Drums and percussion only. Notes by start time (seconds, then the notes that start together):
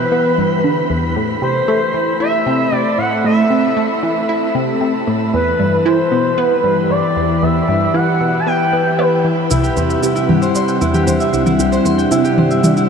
9.51 shaker
9.64 shaker
9.77 shaker
9.90 shaker
10.03 shaker
10.16 shaker
10.29 high tom
10.42 shaker
10.55 shaker
10.68 shaker
10.81 shaker
10.94 high tom, shaker
11.07 shaker
11.20 shaker
11.33 shaker
11.46 high tom, shaker
11.60 shaker
11.73 shaker
11.86 shaker
11.99 shaker
12.12 shaker
12.25 shaker
12.38 high tom
12.51 shaker
12.64 high tom, shaker
12.77 shaker